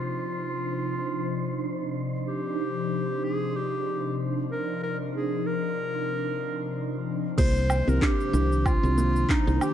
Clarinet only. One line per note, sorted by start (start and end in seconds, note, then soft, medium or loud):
0.00 1.95 F4 medium
2.27 3.25 G4 medium
3.24 3.57 G#4 medium
3.56 4.19 G4 medium
4.52 4.81 A#4 medium
4.83 4.97 A#4 medium
5.15 5.48 G#4 medium
5.46 7.06 A#4 loud
7.38 7.90 C5 loud
7.89 8.04 A#4 loud
8.03 8.67 G4 loud
8.66 9.32 F4 loud
9.30 9.64 D#4 medium
9.62 9.74 G4 loud